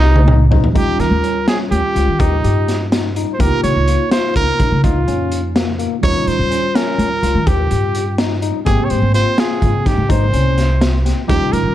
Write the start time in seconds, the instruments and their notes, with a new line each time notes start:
Already playing: upright bass C2, tine electric piano A#3 C4 G5, trumpet D#4
0.03 tine electric piano G4
0.16 high tom
0.26 tine electric piano D#4, mid tom
0.51 tine electric piano D#4, floor tom
0.64 floor tom
0.73 upright bass D#2, tine electric piano G3 C#4 D#4 F4, trumpet G4, kick, closed hi-hat
0.99 upright bass D#3, trumpet A#4, snare, closed hi-hat
1.10 upright bass D#2
1.23 tine electric piano C#4, closed hi-hat
1.47 tine electric piano C#4, trumpet G#4, snare, closed hi-hat
1.71 upright bass D#2, trumpet G4, closed hi-hat
1.95 upright bass C#2, tine electric piano F4, closed hi-hat
2.08 upright bass D#3
2.20 upright bass D#2, trumpet D#4, tine electric piano G4, kick, closed hi-hat
2.44 upright bass G2, tine electric piano G4, closed hi-hat
2.68 snare, closed hi-hat
2.92 tine electric piano D#4, snare, closed hi-hat
3.16 tine electric piano D#4, closed hi-hat
3.34 trumpet C5
3.39 upright bass C#2, tine electric piano A#3 D#4 F4 G4, trumpet A#4, kick, closed hi-hat
3.63 upright bass C#3, trumpet C#5, closed hi-hat
3.75 upright bass C#2
3.88 tine electric piano F4, closed hi-hat
4.11 tine electric piano F4, trumpet C5, snare, closed hi-hat
4.36 upright bass C#2, trumpet A#4, kick, closed hi-hat
4.60 upright bass A#1, tine electric piano D#4, kick, closed hi-hat
4.72 upright bass C#3
4.83 upright bass C#2, tine electric piano D#4, trumpet F4, kick, closed hi-hat
5.07 upright bass F2, tine electric piano C#4, closed hi-hat
5.31 closed hi-hat
5.56 tine electric piano A#3, snare, closed hi-hat
5.79 tine electric piano A#3, closed hi-hat
6.01 upright bass D#2, tine electric piano G3 C#4 D#4 F4, trumpet C#5, kick, closed hi-hat
6.26 upright bass D#3, trumpet C5, closed hi-hat
6.39 upright bass D#2
6.51 tine electric piano C#4, closed hi-hat
6.75 tine electric piano C#4, trumpet A#4, snare, closed hi-hat
6.98 upright bass D#2, closed hi-hat
7.23 upright bass C#2, tine electric piano F4, closed hi-hat
7.35 upright bass D#3
7.47 upright bass D#2, tine electric piano G4, trumpet G4, kick, closed hi-hat
7.71 upright bass G2, tine electric piano G4, closed hi-hat
7.95 closed hi-hat
8.18 tine electric piano D#4, snare, closed hi-hat
8.42 tine electric piano D#4, closed hi-hat
8.65 upright bass G#1, tine electric piano A#3 C4 G4 G5, trumpet G#4, kick, closed hi-hat
8.85 trumpet C#5
8.90 upright bass G#2, trumpet C5, closed hi-hat
9.02 upright bass G#1
9.14 tine electric piano F4, trumpet C5, closed hi-hat
9.38 tine electric piano F4, trumpet G#4, snare, closed hi-hat
9.62 upright bass G#1, kick, closed hi-hat
9.86 upright bass G1, tine electric piano D#4, trumpet G4, kick, snare, closed hi-hat
9.97 upright bass G#2
10.09 upright bass G#1, tine electric piano D#4, trumpet C5, kick, closed hi-hat
10.33 upright bass C2, tine electric piano C#4, closed hi-hat
10.58 snare, closed hi-hat
10.81 tine electric piano C4, snare, closed hi-hat
11.05 tine electric piano C4, snare, closed hi-hat
11.28 upright bass D#2, tine electric piano G3 C#4 D#4 F4, trumpet G4, kick, closed hi-hat
11.52 upright bass D#3, trumpet A#4, closed hi-hat
11.63 upright bass D#2